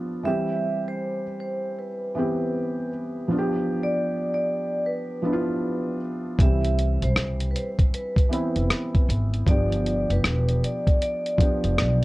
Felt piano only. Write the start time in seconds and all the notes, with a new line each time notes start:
Already playing: F3 B3 D4 F4
0.23 E3 G3 C4 G4
2.15 E3 B3 C4 G4
3.28 F3 B3 D4 F4
3.38 G4
5.22 F3 B3 D4
5.26 E4
5.33 F4
6.39 E3 G3 C4
6.43 G4
8.29 E3 B3 C4 E4
9.46 F3 B3 D4 G4
11.37 F3 B3 D4
11.42 G4